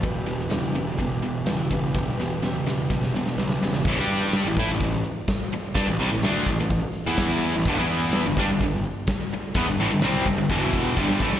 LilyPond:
<<
  \new Staff \with { instrumentName = "Steel-string acoustic guitar" } { \time 4/4 \key e \minor \tempo 4 = 126 <e g e' g' b'>8 <e' g' b'>8 <e g e' g' b'>8 <e' g' b'>8 <g e' g' b'>4 <e g e' g' b'>8 <e' g' b'>8 | <e g e' g' b'>8 <e' g' b'>8 <e g e' g' b'>8 <e' g' b'>8 <g e' g' b'>4 <e g e' g' b'>8 <e' g' b'>8 | r1 | r1 |
r1 | r1 | }
  \new Staff \with { instrumentName = "Overdriven electric guitar" } { \clef bass \time 4/4 \key e \minor r1 | r1 | r1 | r1 |
<g, d>16 <e b e'>4 <g, d>16 <g d'>16 <g, d>16 <g, d>8 r4. | <e b>16 <g, d>16 <a, e>16 <g, d>16 <c g c'>8 <g, d>16 <g, d>16 <e, b, e>4 <g, d g>8 <a, e a>8 | }
  \new Staff \with { instrumentName = "Distorted electric guitar" } { \clef bass \time 4/4 \key e \minor <e, b,>8 <e, b,>8 <e, cis>8 <e, cis>8 <e, b,>8 <e, b,>8 <e, cis>8 <e, cis>8 | <e, b,>8 <e, b,>8 <e, cis>8 <e, cis>8 <e, b,>8 <e, b,>8 <e, cis>8 <e, cis>8 | <a, e>16 <g d' g'>4 <a, e>16 <a e'>16 <a, e>16 <a, e>8 r4. | <g d'>16 <a, e>16 <c g>16 <a, e>16 <d a d'>8 <a, e>16 <a, e>8 r8 <e b e'>4 <a, e>16 |
<g, d>16 <e b e'>4 <g, d>16 <g d'>16 <g, d>16 <g, d>8 r4. | <e b>16 <g, d>16 <a, e>16 <g, d>16 <c g c'>8 <g, d>16 <g, d>16 <e, b, e>4 <g, d g>8 <a, e a>8 | }
  \new Staff \with { instrumentName = "Picked electric bass" } { \clef bass \time 4/4 \key e \minor e,,8 e,,8 e,,8 e,,8 e,,8 e,,8 e,,8 e,,8 | e,,8 e,,8 e,,8 e,,8 e,,8 e,,8 b,,8 e,,8 | a,,16 g,4 a,,16 a,16 a,,16 a,,8 r4. | g,16 a,,16 c,16 a,,16 d,8 a,,16 a,,8 r8 e,4 a,,16 |
g,,16 e,4 g,,16 g,16 g,,16 g,,8 r4. | e,16 g,,16 a,,16 g,,16 c,8 g,,16 g,,16 e,,4 g,,8 a,,8 | }
  \new DrumStaff \with { instrumentName = "Drums" } \drummode { \time 4/4 <hh bd>8 hh16 sn16 <hh sn tamb>8 hh8 <hh bd>8 hh8 <hh sn tamb>8 <hh bd>8 | <bd sn>8 sn8 sn8 sn8 <bd sn>16 sn16 sn16 sn16 sn16 sn16 sn16 sn16 | <cymc bd>8 hh8 <hh sn tamb>8 <hh bd>8 <hh bd>8 hh8 <hh bd sn tamb>8 hh8 | <hh bd>8 hh8 <hh sn tamb>8 <hh bd>8 <hh bd>8 hh8 <hh bd sn tamb>8 hh8 |
<hh bd>8 hh8 <hh sn tamb>8 <hh bd>8 <hh bd>8 hh8 <hh bd sn tamb>8 hh8 | <hh bd>8 hh8 <hh sn tamb>8 <hh bd>8 bd8 bd8 bd16 sn16 bd16 sn16 | }
>>